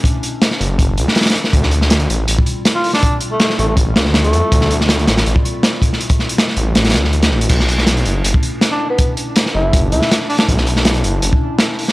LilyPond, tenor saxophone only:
\new Staff \with { instrumentName = "Tenor saxophone" } { \time 4/4 \key b \minor \tempo 4 = 161 r1 | r2. r16 f'8 d'16~ | d'16 r8 a8 r16 a16 a16 r4 r16 a8.~ | a8. r2. r16 |
r1 | r2. r16 d'8 b16~ | b16 r4 r16 e'8. r16 e'8 r8 d'16 d'16 | r1 | }